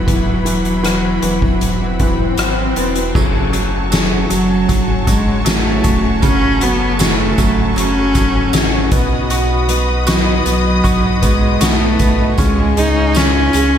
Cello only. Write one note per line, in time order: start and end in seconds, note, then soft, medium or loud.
0.00 2.75 F#3 medium
3.93 4.28 F#3 medium
4.33 5.05 F#3 medium
5.09 5.44 G#3 medium
5.47 6.20 A3 medium
6.24 6.65 C#4 loud
6.63 7.01 B3 medium
7.03 7.74 A3 medium
7.79 8.89 C#4 medium
10.07 10.43 F#3 medium
10.47 11.25 F#3 medium
11.24 11.63 G#3 medium
11.62 12.38 A3 loud
12.39 12.81 G#3 loud
12.79 13.18 D#4 medium
13.17 13.78 C#4 loud